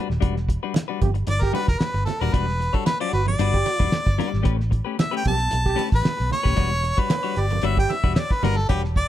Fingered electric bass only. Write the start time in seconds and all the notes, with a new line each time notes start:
0.10 D#1
0.23 E1
1.02 G1
1.27 G1
1.68 E1
1.80 muted fingered electric bass stroke
1.94 G1
2.21 D#1
2.34 E1
3.13 G1
3.39 G1
3.80 E1
3.93 muted fingered electric bass stroke
4.07 G1
4.34 G#1
4.46 A1
5.26 B1
5.53 B1
5.92 A1
6.20 B1
6.46 D#1
6.57 E1
7.37 G1
7.63 G1
8.04 E1
8.43 G1
8.70 E1